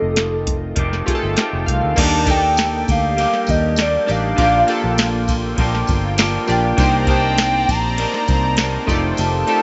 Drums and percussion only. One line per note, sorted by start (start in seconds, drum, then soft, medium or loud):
0.16 snare loud
0.16 closed hi-hat medium
0.47 kick medium
0.47 closed hi-hat medium
0.76 kick medium
0.76 closed hi-hat medium
0.93 snare soft
1.08 kick medium
1.08 closed hi-hat medium
1.37 snare loud
1.37 closed hi-hat medium
1.68 kick medium
1.68 closed hi-hat medium
1.96 kick loud
1.96 crash loud
1.96 ride medium
1.96 tambourine soft
2.26 kick loud
2.26 ride medium
2.26 tambourine soft
2.57 snare loud
2.57 ride medium
2.57 tambourine medium
2.88 kick loud
2.88 ride medium
2.88 tambourine soft
3.18 ride medium
3.18 tambourine soft
3.34 snare soft
3.47 kick medium
3.47 ride medium
3.47 tambourine soft
3.76 snare loud
3.76 ride medium
3.76 tambourine medium
4.08 ride medium
4.08 tambourine soft
4.38 kick loud
4.38 ride medium
4.38 tambourine soft
4.68 ride medium
4.68 tambourine soft
4.98 snare loud
4.98 ride medium
4.98 tambourine medium
5.28 kick loud
5.28 ride medium
5.28 tambourine soft
5.58 kick loud
5.58 ride medium
5.75 snare soft
5.87 kick loud
5.87 ride medium
5.87 tambourine medium
6.18 snare loud
6.18 ride medium
6.18 tambourine medium
6.47 ride medium
6.47 tambourine soft
6.78 kick loud
6.78 ride medium
6.78 tambourine soft
7.07 kick loud
7.07 ride medium
7.38 snare loud
7.38 ride medium
7.38 tambourine medium
7.69 kick medium
7.69 ride medium
7.69 tambourine medium
7.98 ride medium
8.14 snare soft
8.28 kick loud
8.28 ride medium
8.28 tambourine medium
8.57 snare loud
8.57 ride medium
8.57 tambourine medium
8.88 kick loud
8.88 ride medium
8.88 tambourine soft
9.17 ride medium
9.17 tambourine medium
9.47 ride medium